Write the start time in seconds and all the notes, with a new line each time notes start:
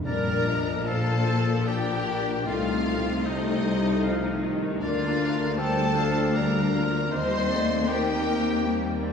0.05 A#1 A#2 G3 A#3 D4 A#4 D5 A#5
0.46 F3 D#5
0.86 F3 F4 A4 C5 F5 A5
1.25 C5
1.66 D4 G4 A#4 D5 G5
2.04 D5
2.45 C2 C3 A3 C4 D#4 F4 A4 D#5 F5
3.25 A3 D#4 A4 C5 D#5
3.65 G3
4.03 F3 F5
4.42 D#3 D#5
4.81 D2 A#3 D4 F4 A#4 D5 F5
5.20 A3
5.58 G3 D4 A4 C5 G5 A5
5.96 F3 F5
6.35 G3 A#4 D5 A#5
6.73 F3
7.11 D#2 G3 C4 C5 D#5 C6
7.50 A3 D5
7.87 A#3 D#4 G4 A#4 C5 G5
8.25 A#3 A#4
8.63 G3 A#3 C5
9.02 C4 D5